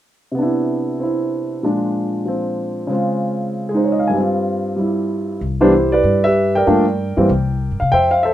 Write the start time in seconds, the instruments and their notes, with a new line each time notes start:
0.32 grand piano C3 B3
0.39 grand piano D4 E4
1.00 grand piano C4 E4
1.63 grand piano A#2 F3 G#3 D4
2.25 grand piano F3 C4
2.87 grand piano C#3 G#3 C4
2.92 grand piano F4
3.69 grand piano G#3 G#4
3.74 grand piano D#4 C5
3.84 grand piano C#5
3.92 grand piano D#5
3.99 grand piano F5
4.07 grand piano G2 G#5
4.13 grand piano G3 C4
4.20 grand piano F4
4.76 grand piano G3 E4
5.41 upright bass C2
5.61 grand piano E3 G3 B3 D4 E4 G4 C5
5.92 grand piano G4 B4 D5
6.04 upright bass G2
6.24 grand piano G4 B4 E5
6.55 grand piano A#4 D5 G5
6.67 upright bass G2, grand piano F3 A3 A#3 D4
7.17 upright bass G2, grand piano E3 G3 A#3 C4
7.29 upright bass C2
7.71 upright bass G2
7.80 upright bass C3, grand piano F5
7.92 upright bass F2, grand piano C5 E5 G5
8.11 grand piano F5
8.23 grand piano A4 C5 E5